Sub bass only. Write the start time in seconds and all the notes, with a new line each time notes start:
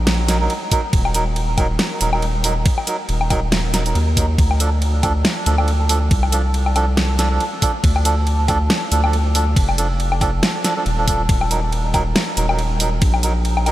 Already playing: A#1
0.93 D#1
2.01 D#1
3.09 D#1
3.95 D#2
4.38 D2
5.46 D2
6.11 C2
7.84 D2
8.91 D2
9.56 F1
10.86 D#1
11.29 D#1
12.37 D#1
13.02 A#1